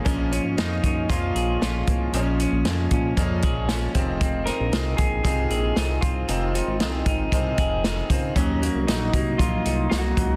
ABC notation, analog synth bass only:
X:1
M:4/4
L:1/16
Q:1/4=116
K:Fphr
V:1 name="Analog synth bass" clef=bass
B,,,3 A,,, F,,2 G,,2 F,,2 B,,,2 B,,,2 C,,2 | B,,,3 B,,, F,,2 B,,2 F,,2 B,,,4 F,,,2- | F,,,3 B,,, C,,2 B,,,2 C,,2 B,,,2 C,,2 C,,2 | F,,,3 A,,, C,,2 A,,,2 C,,2 F,,,4 D,,2 |
E,,3 C,, B,,,2 C,,2 B,,,2 C,,2 C,,2 D,,2 |]